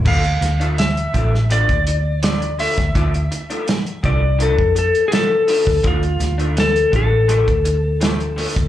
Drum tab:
CC |x---------------|----------------|----------------|
HH |-xxxxxx-xxx-xxox|xxxxxxx-x-xxx-o-|xxxxxxx-xxx-xxox|
SD |--o-o--o----o--o|----o-------o--o|--o-o-------o---|
BD |o-----o--o-----o|o-----o--o-----o|o-----o--o-----o|